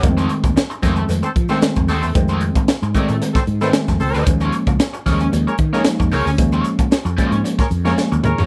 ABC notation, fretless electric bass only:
X:1
M:4/4
L:1/16
Q:1/4=113
K:Eblyd
V:1 name="Fretless electric bass" clef=bass
F,,2 z E,, z2 F,,2 F,, z F, z2 F,, E,, =E,, | F,,3 z2 ^G,, z A,, z2 G,,2 z F,, _D,, =D,, | E,,2 z _D,, z2 E,,2 E,, z E, z2 F,, D,, =D,, | E,,2 z3 F,, z _A,, z2 F,,2 z E,, E,, =E,, |]